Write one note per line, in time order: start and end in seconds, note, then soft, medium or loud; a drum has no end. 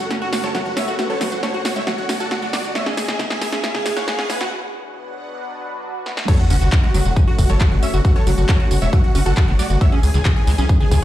0.00 2.72 F#2 medium
0.00 4.48 C#3 medium
0.00 2.72 A3 medium
0.00 2.72 F#4 medium
0.00 2.72 C#5 medium
0.00 riser medium
0.11 0.15 C#4 medium
0.11 snare medium
0.11 closed hi-hat medium
0.11 tambourine soft
0.22 0.29 F#4 loud
0.22 0.29 F#4 medium
0.22 closed hi-hat soft
0.33 0.40 F#4 medium
0.33 snare medium
0.33 open hi-hat loud
0.33 tambourine medium
0.44 0.48 G#3 loud
0.44 0.51 A4 medium
0.44 0.51 C#5 medium
0.44 closed hi-hat medium
0.44 tambourine soft
0.55 0.59 F#3 medium
0.55 0.62 F#4 medium
0.55 snare medium
0.55 closed hi-hat soft
0.55 tambourine soft
0.66 0.73 F#4 medium
0.66 closed hi-hat soft
0.77 0.81 C#4 medium
0.77 0.84 C#5 medium
0.77 0.84 E5 medium
0.77 0.84 E5 loud
0.77 snare medium
0.77 open hi-hat loud
0.77 tambourine medium
0.88 0.95 F#4 medium
0.88 0.95 F#4 loud
0.88 0.95 F#4 medium
0.88 closed hi-hat soft
0.88 tambourine soft
0.99 1.06 F#4 medium
0.99 snare medium
0.99 closed hi-hat soft
0.99 tambourine soft
1.10 1.15 G#3 loud
1.10 1.18 A4 medium
1.10 1.17 C#5 medium
1.10 1.17 C#5 loud
1.10 closed hi-hat soft
1.21 1.26 F#3 medium
1.21 1.28 F#4 medium
1.21 1.29 F#4 medium
1.21 snare medium
1.21 open hi-hat loud
1.21 tambourine medium
1.32 1.40 F#4 medium
1.32 closed hi-hat medium
1.32 tambourine soft
1.43 1.48 C#4 medium
1.43 1.51 A4 medium
1.43 1.50 C#5 loud
1.43 1.51 C#5 loud
1.43 snare medium
1.43 closed hi-hat medium
1.43 tambourine soft
1.54 1.62 F#4 medium
1.54 1.61 F#4 loud
1.54 1.62 F#4 medium
1.54 closed hi-hat soft
1.65 1.73 F#4 medium
1.65 snare medium
1.65 open hi-hat loud
1.65 tambourine medium
1.76 1.81 G#3 loud
1.76 1.84 C#5 medium
1.76 1.84 E5 medium
1.76 1.84 E5 loud
1.76 closed hi-hat medium
1.76 tambourine soft
1.87 1.92 F#3 medium
1.87 1.95 F#4 medium
1.87 snare medium
1.87 closed hi-hat medium
1.87 tambourine soft
1.98 2.06 F#4 medium
1.98 closed hi-hat soft
2.09 2.14 C#4 medium
2.09 2.17 F#4 medium
2.09 snare medium
2.09 open hi-hat loud
2.09 tambourine medium
2.20 2.27 F#4 loud
2.20 2.28 A4 medium
2.20 2.28 F#5 medium
2.20 2.28 F#5 loud
2.20 closed hi-hat medium
2.20 tambourine soft
2.31 2.39 F#4 medium
2.31 snare medium
2.31 closed hi-hat soft
2.31 tambourine soft
2.42 2.47 G#3 loud
2.42 2.50 F#4 medium
2.42 closed hi-hat soft
2.53 2.58 F#3 medium
2.53 2.61 F#4 medium
2.53 2.61 D5 medium
2.53 snare medium
2.53 open hi-hat loud
2.53 tambourine medium
2.64 2.72 F#4 medium
2.64 closed hi-hat medium
2.64 tambourine soft
2.75 4.50 C#2 medium
2.75 4.50 G#3 medium
2.75 2.80 G#3 medium
2.75 4.50 E4 medium
2.75 4.50 G#4 medium
2.75 2.83 C#5 medium
2.75 2.83 E5 loud
2.75 snare medium
2.75 closed hi-hat medium
2.75 tambourine soft
2.86 2.93 C#4 loud
2.86 2.94 G#4 medium
2.86 snare medium
2.86 closed hi-hat soft
2.97 3.05 G#4 medium
2.97 snare loud
2.97 open hi-hat loud
2.97 tambourine medium
3.08 3.13 C#3 loud
3.08 3.16 G#4 medium
3.08 snare medium
3.08 closed hi-hat medium
3.08 tambourine soft
3.19 3.24 C#3 medium
3.19 snare medium
3.19 closed hi-hat medium
3.19 tambourine soft
3.30 3.38 G#4 medium
3.30 snare medium
3.30 closed hi-hat soft
3.41 3.46 G#3 medium
3.41 3.49 G#4 medium
3.41 snare medium
3.41 open hi-hat loud
3.41 tambourine medium
3.52 3.60 C#4 loud
3.52 3.60 G#4 medium
3.52 snare medium
3.52 closed hi-hat medium
3.52 tambourine soft
3.64 snare loud
3.64 closed hi-hat medium
3.64 tambourine soft
3.74 3.79 C#3 loud
3.74 3.82 G#4 medium
3.74 snare medium
3.74 closed hi-hat soft
3.85 3.90 C#3 medium
3.85 3.93 G#4 medium
3.85 snare loud
3.85 open hi-hat loud
3.85 tambourine medium
3.96 4.04 C#5 medium
3.96 4.04 F#5 medium
3.96 snare medium
3.96 closed hi-hat medium
3.96 tambourine soft
4.07 4.12 G#3 medium
4.07 4.15 G#4 medium
4.07 snare loud
4.07 closed hi-hat medium
4.07 tambourine soft
4.19 4.26 C#4 loud
4.19 4.26 G#4 medium
4.19 snare medium
4.19 closed hi-hat soft
4.30 4.37 B4 medium
4.30 4.37 G#5 loud
4.30 snare loud
4.30 open hi-hat loud
4.30 tambourine medium
4.41 4.45 C#3 loud
4.41 4.48 F#4 medium
4.41 snare medium
4.41 closed hi-hat medium
4.41 tambourine soft
4.52 6.26 B2 medium
4.52 6.26 F#3 medium
4.52 6.26 D4 medium
4.52 6.26 B4 medium
4.52 6.26 F#5 medium
5.40 swell medium
6.06 snare medium
6.17 snare medium
6.28 9.78 F#3 medium
6.28 6.33 F#3 medium
6.28 9.78 A3 medium
6.28 11.04 C#4 medium
6.28 6.36 A4 medium
6.28 6.36 C#5 loud
6.28 kick loud
6.28 closed hi-hat medium
6.28 crash loud
6.28 tambourine soft
6.28 sub drop medium
6.39 6.47 F#4 medium
6.39 closed hi-hat soft
6.50 6.57 F#1 loud
6.50 6.55 C#4 medium
6.50 6.58 F#4 medium
6.50 open hi-hat loud
6.50 tambourine medium
6.61 6.68 F#1 medium
6.61 6.68 F#4 loud
6.61 6.69 F#4 medium
6.61 closed hi-hat medium
6.61 tambourine soft
6.72 kick loud
6.72 clap loud
6.72 closed hi-hat medium
6.72 tambourine soft
6.83 6.88 G#3 loud
6.83 6.91 F#4 medium
6.83 closed hi-hat soft
6.94 7.01 F#1 medium
6.94 6.99 F#3 medium
6.94 7.02 F#4 medium
6.94 open hi-hat loud
6.94 tambourine medium
7.05 7.12 E1 medium
7.05 7.13 F#4 medium
7.05 closed hi-hat medium
7.05 tambourine soft
7.16 7.21 C#4 medium
7.16 kick loud
7.16 closed hi-hat medium
7.16 tambourine soft
7.27 7.35 F#4 loud
7.27 7.35 F#4 medium
7.27 closed hi-hat soft
7.39 7.45 F#1 medium
7.39 7.46 F#4 medium
7.39 kick medium
7.39 open hi-hat loud
7.39 tambourine medium
7.50 7.56 F#1 medium
7.50 7.54 G#3 loud
7.50 7.57 A4 medium
7.50 7.57 C#5 loud
7.50 7.57 C#5 medium
7.50 closed hi-hat medium
7.50 tambourine soft
7.61 7.65 F#3 medium
7.61 7.68 F#4 medium
7.61 kick loud
7.61 clap loud
7.61 closed hi-hat medium
7.61 tambourine soft
7.72 7.78 F#1 medium
7.72 7.79 F#4 medium
7.72 closed hi-hat soft
7.83 7.87 C#4 medium
7.83 7.90 C#5 medium
7.83 7.90 E5 medium
7.83 open hi-hat loud
7.83 tambourine medium
7.94 8.00 F#1 medium
7.94 8.01 F#4 medium
7.94 8.01 F#4 loud
7.94 8.01 F#4 medium
7.94 closed hi-hat medium
7.94 tambourine soft
8.05 8.12 F#4 medium
8.05 kick loud
8.05 closed hi-hat medium
8.05 tambourine soft
8.16 8.20 G#3 loud
8.16 8.23 A4 medium
8.16 8.23 C#5 loud
8.16 8.23 C#5 medium
8.16 closed hi-hat soft
8.27 8.34 F#1 loud
8.27 8.31 F#3 medium
8.27 8.34 F#4 medium
8.27 open hi-hat loud
8.27 tambourine medium
8.38 8.45 F#1 medium
8.38 8.45 F#4 medium
8.38 closed hi-hat medium
8.38 tambourine soft
8.49 8.54 C#4 medium
8.49 8.56 A4 medium
8.49 8.56 C#5 medium
8.49 kick loud
8.49 clap loud
8.49 closed hi-hat medium
8.49 tambourine soft
8.60 8.67 F#4 loud
8.60 8.67 F#4 medium
8.60 closed hi-hat soft
8.71 8.78 F#1 medium
8.71 8.78 F#4 medium
8.71 8.79 F#4 medium
8.71 open hi-hat loud
8.71 tambourine medium
8.82 8.89 E1 medium
8.82 8.87 G#3 loud
8.82 8.90 C#5 medium
8.82 8.90 E5 loud
8.82 8.90 E5 medium
8.82 closed hi-hat medium
8.82 tambourine soft
8.93 8.98 F#3 medium
8.93 9.01 F#4 medium
8.93 kick loud
8.93 closed hi-hat medium
8.93 tambourine soft
9.04 9.12 F#4 medium
9.04 closed hi-hat soft
9.15 9.22 F#1 medium
9.15 9.20 C#4 medium
9.15 9.23 F#4 medium
9.15 open hi-hat loud
9.15 tambourine medium
9.26 9.33 F#1 medium
9.26 9.33 F#4 loud
9.26 9.34 A4 medium
9.26 9.34 F#5 medium
9.26 closed hi-hat medium
9.26 tambourine soft
9.37 9.45 F#4 medium
9.37 kick loud
9.37 clap loud
9.37 closed hi-hat medium
9.37 tambourine soft
9.48 9.55 F#1 medium
9.48 9.53 G#3 loud
9.48 9.56 F#4 medium
9.48 closed hi-hat soft
9.59 9.64 F#3 medium
9.59 9.67 F#4 medium
9.59 9.67 D5 medium
9.59 open hi-hat loud
9.59 tambourine medium
9.70 9.77 F#1 medium
9.70 9.78 F#4 medium
9.70 closed hi-hat medium
9.70 tambourine soft
9.81 11.04 E3 medium
9.81 11.04 G#3 medium
9.81 9.86 G#3 medium
9.81 9.89 C#5 medium
9.81 9.89 E5 loud
9.81 kick loud
9.81 closed hi-hat medium
9.81 tambourine soft
9.92 9.99 C#4 loud
9.92 10.00 G#4 medium
9.92 closed hi-hat soft
10.03 10.10 C#2 loud
10.03 10.11 G#4 medium
10.03 open hi-hat loud
10.03 tambourine medium
10.14 10.21 C#2 medium
10.14 10.19 C#3 loud
10.14 10.22 G#4 medium
10.14 closed hi-hat medium
10.14 tambourine soft
10.25 10.30 C#3 medium
10.25 kick loud
10.25 clap loud
10.25 closed hi-hat medium
10.25 tambourine soft
10.36 10.44 G#4 medium
10.36 closed hi-hat soft
10.47 10.54 C#2 loud
10.47 10.52 G#3 medium
10.47 10.55 G#4 medium
10.47 open hi-hat loud
10.47 tambourine medium
10.58 10.65 B1 medium
10.58 10.65 C#4 loud
10.58 10.66 G#4 medium
10.58 closed hi-hat medium
10.58 tambourine soft
10.69 kick loud
10.69 closed hi-hat medium
10.69 tambourine soft
10.80 10.85 C#3 loud
10.80 10.88 G#4 medium
10.80 closed hi-hat soft
10.91 10.98 C#2 medium
10.91 10.96 C#3 medium
10.91 10.99 G#4 medium
10.91 kick medium
10.91 open hi-hat loud
10.91 tambourine medium